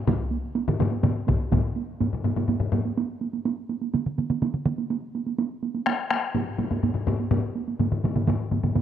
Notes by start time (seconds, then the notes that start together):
0.07 taiko, taiko low-mid, taiko mid, taiko high
0.19 taiko high
0.31 taiko high
0.43 taiko high
0.55 taiko high
0.68 taiko low-mid, taiko mid, taiko high
0.79 taiko low-mid, taiko mid, taiko high
0.92 taiko high
1.03 taiko low-mid, taiko mid, taiko high
1.15 taiko high
1.27 taiko, taiko low-mid, taiko mid, taiko high
1.39 taiko high
1.52 taiko, taiko low-mid, taiko mid, taiko high
1.76 taiko high
1.89 taiko high
2.00 taiko low-mid, taiko high
2.13 taiko low-mid
2.24 taiko low-mid, taiko high
2.36 taiko low-mid, taiko high
2.48 taiko low-mid, taiko high
2.60 taiko low-mid
2.72 taiko low-mid, taiko high
2.85 taiko high
2.97 taiko high
3.21 taiko high
3.33 taiko high
3.45 taiko high
3.69 taiko high
3.81 taiko high
3.94 taiko mid, taiko high
4.06 taiko mid
4.18 taiko mid, taiko high
4.30 taiko mid, taiko high
4.42 taiko mid, taiko high
4.54 taiko mid
4.66 taiko mid, taiko high
4.78 taiko high
4.90 taiko high
5.15 taiko high
5.26 taiko high
5.38 taiko high
5.63 taiko high
5.74 taiko high
5.86 taiko rim, taiko high
6.10 taiko rim, taiko high
6.35 taiko low-mid, taiko high
6.58 taiko low-mid, taiko high
6.71 taiko low-mid, taiko high
6.83 taiko low-mid, taiko high
6.95 taiko low-mid
7.07 taiko low-mid, taiko high
7.20 taiko high
7.31 taiko low-mid, taiko high
7.55 taiko high
7.68 taiko high
7.79 taiko low-mid, taiko mid, taiko high
7.92 taiko low-mid, taiko mid
8.04 taiko low-mid, taiko mid, taiko high
8.16 taiko low-mid, taiko mid, taiko high
8.27 taiko low-mid, taiko mid, taiko high
8.51 taiko low-mid, taiko mid, taiko high
8.63 taiko low-mid, taiko mid, taiko high
8.75 taiko low-mid, taiko mid, taiko high